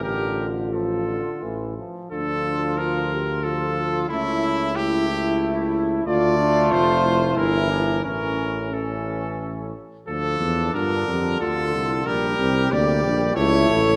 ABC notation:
X:1
M:3/4
L:1/8
Q:1/4=90
K:Dm
V:1 name="Trumpet"
B z A3 z | A2 B2 A2 | E2 G3 z | d2 c2 B2 |
B2 A3 z | A2 B2 A2 | B2 d2 ^c2 |]
V:2 name="Flugelhorn"
G z F3 z | F4 F2 | E2 E4 | F4 E D |
^C2 C3 z | D4 F2 | G4 E2 |]
V:3 name="French horn"
F4- F z | D2 F G F2 | ^C2 E E3 | F D F E3 |
^C4- C z | z2 F G F E | D C B, D E A |]
V:4 name="Trombone" clef=bass
D,2 F, D, E, F, | F,4 F,2 | A,2 A,4 | A,4 E,2 |
E,2 E,3 z | F,2 D,4 | G,2 G,2 A,2 |]
V:5 name="Tuba" clef=bass
A,,,4 A,,, z | D,,6 | ^C,,6 | D,,2 F,,,2 G,,,2 |
A,,,4- A,,, z | D,, E,, G,, F,, D,, C,, | B,,, C,, D,, B,,, ^C,, A,,, |]